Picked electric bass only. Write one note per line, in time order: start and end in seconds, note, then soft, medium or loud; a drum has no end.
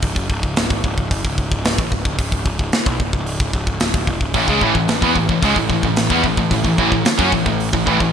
0.03 0.15 C#1 loud
0.16 0.29 F#1 medium
0.29 0.42 C#1 medium
0.43 0.56 C#1 medium
0.57 0.70 C#1 medium
0.70 0.83 G#1 loud
0.84 0.96 C#1 medium
0.98 1.10 C#1 medium
1.11 1.24 F#1 medium
1.25 1.37 C#1 medium
1.38 1.51 C#1 medium
1.51 1.77 C#1 medium
1.78 1.91 A1 medium
1.92 2.05 C#1 medium
2.05 2.18 C#1 medium
2.19 2.31 C#1 medium
2.32 2.45 C#1 medium
2.45 2.58 C#1 loud
2.59 2.72 C#1 medium
2.73 muted picked electric bass stroke soft
2.86 2.99 B1 loud
3.00 3.13 C#1 medium
3.13 3.39 C#1 medium
3.40 3.53 C#1 medium
3.54 3.67 C#1 medium
3.67 3.80 C#1 medium
3.81 3.93 C#1 medium
3.94 4.06 C#1 medium
4.07 4.20 E1 medium
4.21 4.34 C#1 medium
4.34 4.47 A1 medium
4.48 4.61 C#2 medium
4.61 4.75 A1 medium
4.75 4.88 A1 medium
4.89 5.01 A1 medium
5.02 5.15 E2 medium
5.16 5.29 A1 medium
5.29 5.42 A1 medium
5.42 5.56 C#2 medium
5.56 5.69 A1 medium
5.70 5.83 A1 medium
5.83 6.09 A1 medium
6.10 6.23 E2 medium
6.24 6.37 A1 medium
6.37 6.50 A1 medium
6.51 6.64 A1 medium
6.64 6.77 A1 medium
6.78 6.91 A1 loud
6.92 7.05 A1 medium
7.06 muted picked electric bass stroke soft
7.19 7.32 F#2 medium
7.32 7.45 A1 medium
7.46 7.72 A1 medium
7.73 7.86 A1 medium
7.87 8.00 A1 loud
8.00 8.12 A1 medium